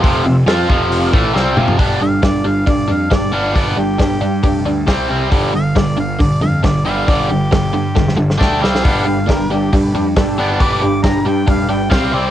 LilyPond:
<<
  \new Staff \with { instrumentName = "Harmonica" } { \time 4/4 \key g \mixolydian \tempo 4 = 136 r1 | r8 f''8 d''8 f''8 d''8 f''8 d''8 f''8 | d''8 g'2 r4. | r8 f''8 d''8 f''8 d''8 f''8 d''8 f''8 |
d''8 g'2 r8 g''8 f''8~ | f''4 bes'8 g'8 r2 | d'''4 bes''8 g''8 f''8 g''8 f''8 d''8 | }
  \new Staff \with { instrumentName = "Transistor combo organ" } { \time 4/4 \key g \mixolydian <f' c'' e''>4 <f' c'' f''>4 <f' c'' f''>4 <f' c'' e''>4 | r1 | r1 | r1 |
r1 | <d' g' b'>4 <d' g' b'>8 <d' g' a'>8 <d' g' b'>4 <d' g' a'>4 | <d' g' b'>4 <d' g' b'>8 <d' g' b'>8 <d' g' b'>4 <c' g' c''>8 <c' g' c''>8 | }
  \new Staff \with { instrumentName = "Overdriven electric guitar" } { \clef bass \time 4/4 \key g \mixolydian <f, c f>8 <f, c>8 <f c' f'>8 <f, c f>4 <a, e a>8 <c g c'>8 <f, c f>8 | <g b d'>8 <g d'>8 <g d'>8 <g d'>8 <g d'>8 <g d'>8 <g d'>8 <g b d'>8 | <g b d'>8 <g d'>8 <g d'>8 <g d'>8 <g d'>8 <g d'>8 <c g c'>8 <c g c'>8 | <g, d g>8 <g, d>8 <g, d>8 <g, d>8 <g, d>8 <g, d>8 <g, d>8 <g, d g>8 |
<g, d g>8 <g, d>8 <g, d>8 <g, d>8 <g, d>8 <g, d>8 <d a d'>8 <c g c'>8 | <g b d'>8 <g d'>8 <g d'>8 <g d'>8 <g d'>8 <g d'>8 <g d'>8 <g b d'>8 | <g b d'>8 <g d'>8 <g d'>8 <g d'>8 <g d'>8 <g d'>8 <c g c'>8 <c g c'>8 | }
  \new Staff \with { instrumentName = "Picked electric bass" } { \clef bass \time 4/4 \key g \mixolydian f,,8 f,,8 f,8 f,,4 a,,8 c,8 f,,8 | g,,8 g,,8 g,,4 g,,8 f,8 g,,8 g,,8 | g,,8 g,,8 g,,8 g,8 f,,8 d,8 c,8 c,8 | g,,8 g,,8 g,,4 g,,8 f,8 g,,8 g,,8 |
g,,8 g,,8 g,,8 g,8 f,,8 g,,8 d,8 c,8 | g,,8 g,,8 g,,4 g,,8 f,8 g,,8 g,,8 | g,,8 g,,8 g,,8 g,8 f,,8 g,,8 c,8 c,8 | }
  \new DrumStaff \with { instrumentName = "Drums" } \drummode { \time 4/4 <hho bd>4 <hho sn>8 bd8 hho8 bd8 sn8 toml16 tomfh16 | <hho bd>4 <hho bd sn>4 <hho bd>4 <hho bd sn>4 | <hho bd>4 <hho bd sn>4 <hho bd>4 <hho bd sn>4 | <hho bd>4 <hho bd sn>4 <hho bd>4 <hho bd sn>4 |
<hho bd>4 <hho bd sn>4 <bd sn>16 sn8 sn16 <bd sn>8 sn16 sn16 | <hho bd>4 <hho bd sn>4 <hho bd>4 <hho bd sn>4 | <hho bd>4 <hho bd sn>4 <hho bd>4 <hho bd sn>4 | }
>>